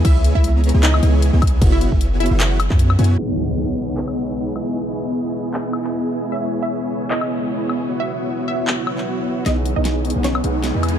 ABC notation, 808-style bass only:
X:1
M:4/4
L:1/16
Q:"Swing 16ths" 1/4=153
K:B
V:1 name="808-style bass" clef=bass
C,,3 C,,4 C,,3 C,,3 C,,3 | F,,,3 F,,,4 F,,,4 F,,3 F,,2 | z16 | z16 |
z16 | z16 | B,,,3 B,,,4 B,,,3 B,,,3 E,,3 |]